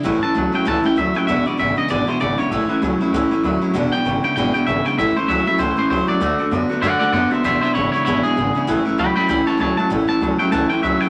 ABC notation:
X:1
M:4/4
L:1/8
Q:"Swing" 1/4=195
K:A
V:1 name="Clean electric guitar"
z a2 =g a g e g | e d e ^d =d =c d ^c- | c3 z4 z | z =g2 g g g e g |
e =c e e c c c d- | d3 z [df] [df] [df] [=ce] | [=ce] [ce] [E^c] [Ec] [Ec] G3- | G z [=gb] [gb] [gb] [ca] [ca] a |
z a2 =g a g e g |]
V:2 name="Steel-string acoustic guitar"
[A,,E,A,CE] [A,CE] [E,A,CE] [A,CE] [A,,E,A,CE] [A,CE] [E,A,CE] [A,CE] | [E,,B,,E,G,DE] [E,G,DE] [E,G,DE] [E,G,DE] [E,,B,,E,G,DE] [E,G,DE] [E,G,DE] [E,G,DE] | [A,,E,A,CE] [A,CE] [E,A,CE] [A,CE] [A,,E,A,CE] [A,CE] [E,A,CE] [A,CE] | [E,,B,,E,G,DE] [E,G,DE] [E,G,DE] [E,G,DE] [E,,B,,E,G,DE] [E,G,DE] [E,G,DE] [E,G,DE] |
[A,,E,A,CE] [A,CE] [E,A,CE] [A,CE] [A,,E,A,CE] [A,CE] [E,A,CE] [A,CE] | [D,A,DF] [A,DF] [D,A,DF] [A,DF] [D,A,DF] [A,DF] [D,A,DF] [A,DF] | [E,,B,,E,G,DE] [E,G,DE] [E,G,DE] [E,G,DE] [E,,B,,E,G,DE] [E,G,DE] [E,G,DE] [E,G,DE] | [A,,E,A,CE] [A,CE] [E,A,CE] [A,CE] [A,,E,A,CE] [A,CE] [E,A,CE] [A,CE] |
[A,,E,A,CE] [A,CE] [E,A,CE] [A,CE] [A,,E,A,CE] [A,CE] [E,A,CE] [A,CE] |]
V:3 name="Clean electric guitar" clef=bass
[A,,E,] [A,,E,] [A,,F,] [A,,F,] [A,,E,] [A,,E,] [A,,F,] [A,,F,] | [E,,B,,] [E,,B,,] [E,,C,] [E,,C,] [E,,B,,] [E,,B,,] [E,,C,] [E,,C,] | [A,,E,] [A,,E,] [A,,F,] [A,,F,] [A,,E,] [A,,E,] [A,,F,] [A,,F,] | [E,,B,,] [E,,B,,] [E,,C,] [E,,C,] [E,,B,,] [E,,B,,] [E,,C,] [E,,C,] |
[A,,E,] [A,,E,] [A,,F,] [A,,F,] [A,,E,] [A,,E,] [A,,F,] [A,,F,] | [D,A,] [D,A,] [D,B,] [D,B,] [D,A,] [D,A,] [D,B,] [D,B,] | [E,,B,,] [E,,B,,] [E,,C,] [E,,C,] [E,,B,,] [E,,B,,] [E,,C,] [E,,C,] | [A,,E,] [A,,E,] [A,,F,] [A,,F,] [A,,E,] [A,,E,] [A,,F,] [A,,F,] |
[A,,E,] [A,,E,] [A,,F,] [A,,F,] [A,,E,] [A,,E,] [A,,F,] [A,,F,] |]
V:4 name="Upright bass" clef=bass
A,,, z C,, z C,, z D,, z | E,,, z G,,, z G,,, z G,,, z | A,,, z C,, z C,, z D,, z | E,,, z G,,, z G,,, z G,,, z |
A,,, z C,, z C,, z C,, z | D,, z F,, z F,, z F,, z | E,,, z G,,, z G,,, z G,,, z | A,,, z C,, z C,, z C,, z |
A,,, z C,, z C,, z C,, z |]